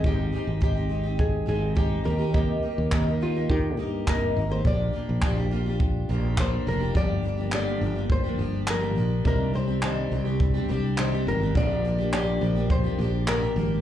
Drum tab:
CP |--------|--x---x-|--x---x-|--x---x-|
BD |o-o-o-o-|o-o-o-o-|o-o-o-o-|o---o---|

CP |--x---x-|--x---x-|
BD |o---o---|o---o---|